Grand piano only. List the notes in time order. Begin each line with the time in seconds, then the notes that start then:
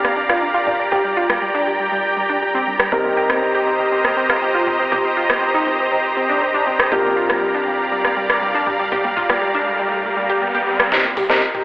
Already playing: C3 G3 D4 F4 A#4
2.92 C3 G3 C4 D#4 A#4
6.92 C3 G3 D4 F4 A#4
10.92 C3 G3 C4 D#4 A#4
11.30 C3 G3 C4 D#4 A#4